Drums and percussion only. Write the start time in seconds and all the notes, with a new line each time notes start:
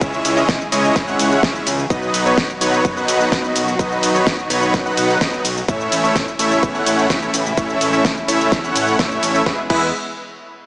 0.01 kick, ride, shaker
0.14 shaker
0.25 open hi-hat, ride, shaker
0.37 shaker
0.49 kick, snare, ride, shaker
0.61 shaker
0.72 open hi-hat, ride, shaker
0.84 shaker
0.96 kick, snare, ride, shaker
1.08 shaker
1.19 open hi-hat, ride, shaker
1.32 shaker
1.43 kick, snare, ride, shaker
1.55 shaker
1.67 open hi-hat, ride, shaker
1.79 shaker
1.90 kick, ride, shaker
2.03 shaker
2.14 open hi-hat, ride, shaker
2.26 shaker
2.38 kick, snare, ride, shaker
2.50 shaker
2.61 open hi-hat, ride, shaker
2.73 shaker
2.85 kick, ride, shaker
2.97 shaker
3.08 open hi-hat, ride, shaker
3.21 shaker
3.32 kick, snare, ride, shaker
3.44 shaker
3.56 open hi-hat, ride, shaker
3.68 shaker
3.79 kick, ride, shaker
3.92 shaker
4.03 open hi-hat, ride, shaker
4.15 shaker
4.27 kick, snare, ride, shaker
4.39 shaker
4.50 open hi-hat, ride, shaker
4.62 shaker
4.74 kick, snare, ride, shaker
4.86 shaker
4.97 open hi-hat, ride, shaker
5.10 shaker
5.21 kick, snare, ride, shaker
5.33 shaker
5.45 open hi-hat, ride, shaker
5.57 shaker
5.68 kick, ride, shaker
5.81 shaker
5.92 open hi-hat, ride, shaker
6.04 shaker
6.16 kick, snare, ride, shaker
6.28 shaker
6.39 open hi-hat, ride, shaker
6.52 shaker
6.63 kick, ride, shaker
6.75 shaker
6.86 open hi-hat, ride, shaker
6.99 shaker
7.10 kick, snare, ride, shaker
7.22 shaker
7.34 open hi-hat, ride, shaker
7.46 shaker
7.57 kick, ride, shaker
7.70 shaker
7.81 open hi-hat, ride, shaker
7.93 shaker
8.05 kick, snare, ride, shaker
8.17 shaker
8.28 open hi-hat, ride, shaker
8.41 shaker
8.52 kick, snare, ride, shaker
8.64 shaker
8.76 open hi-hat, ride, shaker
8.88 shaker
8.99 kick, snare, ride, shaker
9.11 shaker
9.23 open hi-hat, ride, shaker
9.35 shaker
9.46 kick, snare
9.70 kick, crash